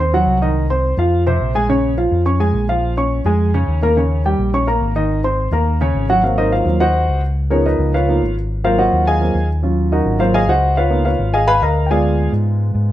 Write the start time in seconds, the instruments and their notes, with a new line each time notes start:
Already playing: fingered electric bass D#2
0.00 grand piano C4 C5 C6
0.13 grand piano F#3 F#4 F#5
0.26 fingered electric bass C2
0.41 grand piano D#3 D#4 D#5
0.70 grand piano C4 C5 C6
0.97 fingered electric bass F2, grand piano F3 F4 F5
1.27 grand piano C3 C4 C5
1.40 fingered electric bass A#1
1.55 grand piano G#3 G#4 G#5
1.69 grand piano C#3 C#4 C#5
1.97 grand piano F3 F4 F5
2.11 fingered electric bass F2
2.26 grand piano C#4 C#5 C#6
2.40 grand piano G#3 G#4 G#5
2.53 fingered electric bass A#1
2.69 grand piano F3 F4 F5
2.97 grand piano C#4 C#5 C#6
3.24 fingered electric bass F2, grand piano G#3 G#4 G#5
3.54 grand piano C#3 C#4 C#5
3.68 fingered electric bass D#2
3.83 grand piano A#3 A#4 A#5
3.97 grand piano C#3 C#4 C#5
4.25 grand piano G3 G4 G5
4.39 fingered electric bass A#1
4.54 grand piano C#4 C#5 C#6
4.67 grand piano A#3 A#4 A#5
4.81 fingered electric bass G#1
4.96 grand piano D#3 D#4 D#5
5.24 grand piano C4 C5 C6
5.51 fingered electric bass D#2, grand piano A#3 A#4 A#5
5.81 grand piano C#3 C#4 C#5
5.94 fingered electric bass G#1
6.09 grand piano F#3 F#4 F#5
6.23 grand piano F#3 A#3 C4 F5
6.38 grand piano D#4 A#4 C5 D#5
6.52 grand piano F4 A#4 C5 F5
6.65 fingered electric bass D#2, grand piano F#3 A#3 C4 F4
6.80 grand piano F#4 C5 D#5 F#5
7.08 fingered electric bass C#2
7.50 grand piano F3 B3 C#4 D#4 G#4 A#4 C#5
7.66 grand piano D#4 A#4 B4 D#5
7.78 fingered electric bass C#2
7.94 grand piano F4 B4 C#5 F5
8.08 grand piano F3 A#3 B3 D#4
8.21 fingered electric bass G#1
8.64 grand piano F#3 A#3 C4 F4 A#4 C5 F5
8.79 grand piano F#4 C5 D#5 F#5
8.93 fingered electric bass D#2
9.07 grand piano G#4 D#5 F5 G#5
9.21 grand piano F#3 A#3 C4 F4
9.34 fingered electric bass D#2
9.63 grand piano F#3 C#4 F4
9.92 grand piano D#4 F#4 A#4 D#5
10.05 fingered electric bass G#1
10.19 grand piano F#3 A#3 C4 F4 A#4 C5 F5
10.34 grand piano G#4 D#5 F5 G#5
10.47 fingered electric bass C#2, grand piano F#4 C5 D#5 F#5
10.77 grand piano F4 B4 C#5 F5
10.90 grand piano A#3 B3 D#4 F4
11.05 grand piano F4 B4 C#5 F5
11.19 fingered electric bass G#1
11.34 grand piano G#4 D#5 F5 G#5
11.48 grand piano B4 F5 G#5 B5
11.61 fingered electric bass D2, grand piano A#4 D#5 F5 A#5
11.86 grand piano G#3 G5
11.90 grand piano B3 F4 G#4 D5 F5 G#5
12.32 fingered electric bass G#2
12.75 fingered electric bass G#2